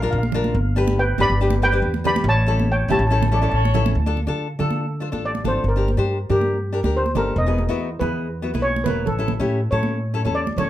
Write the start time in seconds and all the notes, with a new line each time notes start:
0.01 D4 F4 A#4 F5
0.11 A#1 F5
0.18 F5
0.23 high conga
0.32 D4 F4 A#4, low conga
0.44 high conga
0.55 G1
0.76 D4 G4 B4
0.87 high conga
0.99 B4 G5
1.18 G1 D4 G4 B4 D5 B5, low conga
1.29 G1
1.41 D4 G4 B4
1.50 high conga
1.62 D4 G4 B4 G5
1.72 D4 G4 B4
1.82 E2
1.94 high conga
2.04 D4 G4 B4 D5 B5, low conga
2.16 high conga
2.24 A1
2.28 C#5 A5
2.46 C#4 E4 A4
2.59 high conga
2.71 C#5 G5
2.88 A1 C#4 E4 G4 C#5 A5, high conga, low conga
2.99 A1 A5
3.07 C#4 A5
3.11 E4 A4 A5
3.21 A5, high conga, low conga
3.28 C#4 A5
3.32 D4 E4 A4 D5
3.37 A5
3.42 C#4 E4 A4 A5
3.50 A1 A5
3.54 C#4 C#5 A5
3.65 high conga
3.74 C#4 E4 A4, low conga
3.86 high conga
3.95 D2
4.06 D4 F4 A4
4.17 high conga
4.27 D3 D4 F4 A4
4.59 D3 D4 F4 A4, low conga
4.70 high conga
5.00 D4 F4 C5
5.12 A1 D4 F4 A4, high conga
5.25 D5
5.35 high conga
5.44 G#1 D4 F4 A4 C5, high conga, low conga
5.64 G1
5.68 A#4
5.76 D4 G4 A#4
5.88 high conga
5.97 G2 D4 G4 C5
6.29 G2 D4 G4 A#4, low conga
6.41 high conga
6.72 D4 G4 A#4
6.83 D2 D4 G4 A#4, high conga
6.97 C5
7.06 high conga
7.15 G1 D4 G4 A4 A#4, high conga, low conga
7.36 E1 D#5
7.46 B3 E4 G#4
7.58 high conga
7.69 E2 B3 E4 F#4
7.99 E2 B3 E4 G#4 B4, low conga
8.42 B3 E4 F#4
8.54 B1 B3 E4 B4, high conga
8.62 C#5
8.76 high conga
8.84 E1 B3 E4 A#4 B4, high conga, low conga
9.06 A1 A4, low conga
9.19 C#4 E4 A4
9.28 high conga, low conga
9.39 A2 C#4 E4 G4
9.71 A2 C#4 E4 A4 C#5
9.83 high conga
10.14 C#4 E4 A4
10.25 E2 C#4 E4 A4, high conga
10.35 D5
10.47 high conga
10.57 A1 C#4 E4 A4 C#5, high conga, low conga